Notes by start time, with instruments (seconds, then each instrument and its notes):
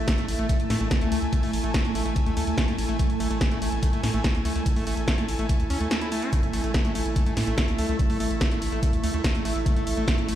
Already playing: ambient pad A3, analog synth pad E4 A4 E5
0.08 acid bass A3, kick, snare, closed hi-hat
0.18 analog synth bass A1, acid bass A3, closed hi-hat
0.28 analog synth bass A1, open hi-hat
0.39 analog synth bass A1, acid bass A3, closed hi-hat
0.49 acid bass A3, kick, closed hi-hat
0.60 analog synth bass A1, closed hi-hat
0.65 analog synth pad G#5
0.70 analog synth bass A2, acid bass A3, snare, open hi-hat
0.81 analog synth bass A1, acid bass A3, closed hi-hat
0.91 kick, snare, closed hi-hat
1.01 analog synth bass C#2, acid bass A3, closed hi-hat
1.12 analog synth bass C#2, acid bass A3, open hi-hat
1.22 analog synth bass C#2, closed hi-hat
1.33 acid bass A3, kick, closed hi-hat
1.43 analog synth bass A1, acid bass A3, open hi-hat
1.53 analog synth bass A1, open hi-hat
1.64 analog synth bass A1, acid bass A3, closed hi-hat
1.74 acid bass A3, kick, snare, closed hi-hat
1.85 analog synth bass A1, closed hi-hat
1.95 analog synth bass A1, acid bass A3, open hi-hat
2.06 analog synth bass A1, acid bass A3, closed hi-hat
2.16 kick, closed hi-hat
2.26 analog synth bass D2, acid bass A3, closed hi-hat
2.37 analog synth bass D2, acid bass A3, open hi-hat
2.47 analog synth bass D2, closed hi-hat
2.58 acid bass A3, kick, snare, closed hi-hat
2.68 analog synth bass A1, acid bass A3, closed hi-hat
2.78 analog synth bass A1, open hi-hat
2.89 analog synth bass A1, acid bass A3, closed hi-hat
2.99 acid bass A3, kick, closed hi-hat
3.10 analog synth bass A1, closed hi-hat
3.20 analog synth bass A1, acid bass A3, open hi-hat
3.31 analog synth bass A1, acid bass A3, closed hi-hat
3.41 kick, snare, closed hi-hat
3.51 analog synth bass A1, acid bass A3, closed hi-hat
3.62 analog synth bass A1, acid bass A3, open hi-hat
3.72 analog synth bass A1, closed hi-hat
3.83 acid bass A3, kick, closed hi-hat
3.93 analog synth bass A1, acid bass A3, closed hi-hat
4.03 analog synth bass A2, snare, open hi-hat
4.14 analog synth bass A1, acid bass A3, closed hi-hat
4.24 acid bass A3, kick, snare, closed hi-hat
4.35 analog synth bass C#2, closed hi-hat
4.45 analog synth bass C#2, acid bass A3, open hi-hat
4.56 analog synth bass C#2, acid bass A3, closed hi-hat
4.66 kick, closed hi-hat
4.76 analog synth bass A1, acid bass A3, open hi-hat
4.87 analog synth bass A1, acid bass A3, open hi-hat
4.97 analog synth bass A1, closed hi-hat
5.08 acid bass A3, kick, snare, closed hi-hat
5.18 analog synth bass A1, acid bass A3, closed hi-hat
5.28 analog synth bass A1, open hi-hat
5.39 analog synth bass A1, acid bass A3, closed hi-hat
5.49 acid bass A3, kick, closed hi-hat
5.60 analog synth bass D2, closed hi-hat
5.70 analog synth bass D2, acid bass C#4, open hi-hat
5.81 analog synth bass D2, acid bass A3, closed hi-hat
5.91 snare, closed hi-hat
6.01 acid bass E4, closed hi-hat
6.12 acid bass A3, open hi-hat
6.22 acid bass C#4, closed hi-hat
6.33 ambient pad A3, acid bass A3, kick, closed hi-hat
6.43 analog synth bass A1, closed hi-hat
6.53 analog synth bass A1, acid bass A3, open hi-hat
6.64 analog synth bass A1, acid bass A3, closed hi-hat
6.74 kick, snare, closed hi-hat
6.85 analog synth bass A1, acid bass A3, closed hi-hat
6.95 analog synth bass A1, acid bass A3, open hi-hat
7.06 analog synth bass A1, closed hi-hat
7.16 acid bass A3, kick, closed hi-hat
7.26 analog synth bass A1, acid bass A3, closed hi-hat
7.31 analog synth pad E5
7.37 analog synth bass A2, snare, open hi-hat
7.47 analog synth bass A1, acid bass A3, closed hi-hat
7.58 acid bass A3, kick, snare, closed hi-hat
7.68 analog synth bass C#2, closed hi-hat
7.79 analog synth bass C#2, acid bass A3, open hi-hat
7.89 analog synth bass C#2, acid bass A3, closed hi-hat
7.99 kick, closed hi-hat
8.10 analog synth bass A1, acid bass A3, open hi-hat
8.20 analog synth bass A1, acid bass A3, open hi-hat
8.31 analog synth bass A1, closed hi-hat
8.41 acid bass A3, kick, snare, closed hi-hat
8.51 analog synth bass A1, acid bass A3, closed hi-hat
8.62 analog synth bass A1, open hi-hat
8.72 analog synth bass A1, acid bass A3, closed hi-hat
8.83 acid bass A3, kick, closed hi-hat
8.93 analog synth bass D2, closed hi-hat
9.04 analog synth bass D2, acid bass A3, open hi-hat
9.14 analog synth bass D2, acid bass A3, closed hi-hat
9.24 kick, snare, closed hi-hat
9.35 analog synth bass A1, acid bass A3, closed hi-hat
9.45 analog synth bass A1, acid bass A3, open hi-hat
9.56 analog synth bass A1, closed hi-hat
9.66 acid bass A3, kick, closed hi-hat
9.76 analog synth bass A1, acid bass A3, closed hi-hat
9.87 analog synth bass A1, open hi-hat
9.97 analog synth bass A1, acid bass A3, closed hi-hat
10.08 acid bass A3, kick, snare, closed hi-hat
10.18 analog synth bass A1, closed hi-hat
10.28 analog synth bass A1, acid bass A3, open hi-hat